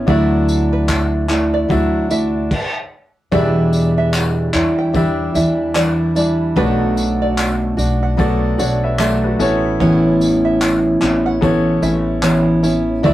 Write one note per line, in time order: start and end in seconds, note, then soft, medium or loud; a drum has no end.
0.07 1.66 D2 loud
0.07 1.31 D3 medium
0.07 1.29 F#3 medium
0.07 1.29 A3 medium
0.07 1.15 D4 medium
0.07 1.29 D4 loud
0.07 1.28 E4 medium
0.07 1.16 F#4 medium
0.07 0.46 D5 loud
0.07 1.17 E5 medium
0.07 kick loud
0.07 tambourine soft
0.48 tambourine medium
0.48 tambourine soft
0.73 0.89 B4 medium
0.89 1.12 A4 medium
0.89 kick loud
0.89 clap loud
0.89 tambourine medium
1.28 1.68 A3 soft
1.28 1.69 D4 medium
1.28 1.70 E4 medium
1.28 clap medium
1.28 tambourine medium
1.54 1.92 D5 medium
1.69 2.47 D2 loud
1.69 2.10 F#3 medium
1.69 2.10 A3 medium
1.69 2.51 D4 medium
1.69 2.10 D4 medium
1.69 2.09 E4 medium
1.69 2.51 F#4 medium
1.69 2.52 E5 medium
1.69 kick loud
1.69 tambourine soft
2.10 2.52 A3 soft
2.10 2.51 D4 soft
2.10 2.51 E4 medium
2.10 2.34 E5 medium
2.10 tambourine medium
2.10 tambourine soft
2.51 kick loud
2.51 crash medium
3.31 4.53 E2 medium
3.31 4.50 E2 loud
3.31 4.54 B2 medium
3.31 4.54 E3 medium
3.31 4.53 G3 medium
3.31 4.40 D4 medium
3.31 4.54 D4 medium
3.31 4.52 E4 loud
3.31 4.41 G4 medium
3.31 3.71 D5 medium
3.31 4.41 E5 medium
3.31 kick loud
3.31 tambourine soft
3.73 tambourine soft
3.73 tambourine medium
3.98 4.14 E5 medium
4.13 4.37 F#5 medium
4.13 clap loud
4.13 tambourine medium
4.53 5.31 E2 medium
4.53 4.92 E3 soft
4.53 4.93 G3 medium
4.53 4.94 D4 medium
4.53 4.94 E4 medium
4.53 clap medium
4.53 tambourine medium
4.79 5.17 G5 medium
4.93 5.34 E3 medium
4.93 5.35 G3 medium
4.93 6.02 D4 medium
4.93 5.34 D4 medium
4.93 5.33 E4 medium
4.93 6.03 G4 medium
4.93 6.03 E5 medium
4.93 kick loud
4.93 tambourine soft
5.34 6.53 E2 medium
5.34 5.74 E3 soft
5.34 5.75 G3 soft
5.34 5.75 D4 medium
5.34 5.75 E4 medium
5.34 5.58 E5 medium
5.34 tambourine medium
5.75 6.16 E3 medium
5.75 6.16 G3 medium
5.75 6.15 D4 medium
5.75 6.14 E4 medium
5.75 5.99 D5 medium
5.75 clap loud
5.75 tambourine medium
6.15 6.56 E3 soft
6.15 6.56 G3 medium
6.15 6.56 D4 medium
6.15 6.56 E4 medium
6.15 6.39 D5 medium
6.15 tambourine soft
6.15 tambourine medium
6.56 7.74 B1 loud
6.56 7.78 B2 medium
6.56 7.78 F#3 medium
6.56 7.79 A3 medium
6.56 7.64 B3 medium
6.56 7.77 D4 medium
6.56 7.76 F#4 medium
6.56 7.65 A4 medium
6.56 6.95 B4 loud
6.56 7.66 D5 medium
6.56 kick loud
6.56 tambourine soft
6.97 tambourine medium
7.22 7.38 D5 medium
7.38 7.61 E5 medium
7.38 clap loud
7.38 tambourine medium
7.77 8.55 B1 medium
7.77 8.17 A3 medium
7.77 8.17 D4 medium
7.77 8.18 F#4 medium
7.77 tambourine medium
8.03 8.41 F#5 medium
8.17 8.58 F#3 medium
8.17 8.59 A3 medium
8.17 9.26 B3 medium
8.17 8.58 D4 medium
8.17 8.57 F#4 medium
8.17 8.59 A4 medium
8.17 8.59 D5 medium
8.17 kick loud
8.17 tambourine soft
8.58 9.36 B1 medium
8.58 8.98 A3 soft
8.58 8.99 D4 medium
8.58 8.99 F#4 medium
8.58 8.82 C#5 soft
8.58 8.82 D5 medium
8.58 8.82 F#5 medium
8.58 tambourine soft
8.58 tambourine medium
8.84 8.99 B4 medium
8.84 8.99 E5 medium
8.99 9.39 F#3 medium
8.99 9.40 A3 medium
8.99 9.40 D4 medium
8.99 9.39 F#4 medium
8.99 9.23 A4 medium
8.99 9.23 D5 medium
8.99 9.60 E5 medium
8.99 clap loud
8.99 tambourine medium
9.24 9.63 F#4 medium
9.24 9.62 B4 medium
9.39 10.98 A1 loud
9.39 10.71 B3 medium
9.39 9.80 B3 soft
9.39 9.80 C#4 medium
9.39 9.80 E4 medium
9.39 10.71 A4 medium
9.39 10.72 C#5 loud
9.39 tambourine medium
9.80 11.02 A2 medium
9.80 11.41 E3 medium
9.80 11.02 B3 medium
9.80 11.01 C#4 loud
9.80 11.00 E4 loud
9.80 10.19 C#5 medium
9.80 kick loud
9.80 tambourine soft
10.21 tambourine medium
10.45 10.61 E5 medium
10.61 10.84 F#5 medium
10.61 clap loud
10.61 tambourine medium
11.01 11.79 A1 loud
11.01 11.41 B3 soft
11.01 11.42 C#4 medium
11.01 11.42 E4 medium
11.01 clap medium
11.01 tambourine medium
11.26 11.64 F#5 medium
11.41 11.82 E3 medium
11.41 12.50 B3 medium
11.41 11.83 B3 medium
11.41 11.83 C#4 medium
11.41 11.81 E4 medium
11.41 12.50 A4 medium
11.41 12.51 C#5 medium
11.41 kick loud
11.41 tambourine soft
11.82 13.00 A1 loud
11.82 12.22 B3 soft
11.82 12.22 C#4 soft
11.82 12.23 E4 medium
11.82 12.06 E5 medium
11.82 tambourine medium
12.22 12.63 E3 medium
12.22 12.64 B3 medium
12.22 12.63 C#4 medium
12.22 12.61 E4 medium
12.22 12.46 C#5 medium
12.22 clap loud
12.22 tambourine medium
12.63 13.03 B3 medium
12.63 13.04 C#4 medium
12.63 13.04 E4 medium
12.63 12.87 C#5 medium
12.63 tambourine medium
12.63 tambourine soft
13.03 13.14 D2 loud
13.03 13.14 D3 medium
13.03 13.14 F#3 medium
13.03 13.14 A3 medium
13.03 13.14 D4 medium
13.03 13.14 E4 loud
13.03 13.14 F#4 medium
13.03 13.14 D5 loud
13.03 13.14 E5 medium
13.03 kick loud
13.03 tambourine soft